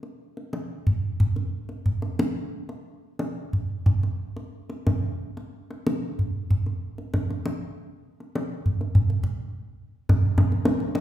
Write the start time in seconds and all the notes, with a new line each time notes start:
0.03 kendang slap
0.37 kendang slap
0.53 kendang high
0.87 kendang low
1.20 kendang low
1.36 kendang slap
1.69 kendang slap
1.86 kendang low
2.02 kendang slap
2.19 kendang high
2.69 kendang slap
3.19 kendang high
3.53 kendang low
3.86 kendang low
4.03 kendang slap
4.37 kendang slap
4.70 kendang slap
4.87 kendang high, kendang low
5.37 kendang slap
5.71 kendang slap
5.87 kendang high
6.19 kendang low
6.51 kendang low
6.66 kendang slap
6.98 kendang slap
7.14 kendang high, kendang low
7.30 kendang slap
7.46 kendang high
8.20 kendang slap
8.35 kendang high
8.66 kendang low
8.81 kendang slap
8.95 kendang low
9.10 kendang slap
9.24 kendang low
10.09 kendang high, kendang low
10.38 kendang high, kendang low
10.52 kendang slap
10.65 kendang high
10.80 kendang slap
10.95 kendang high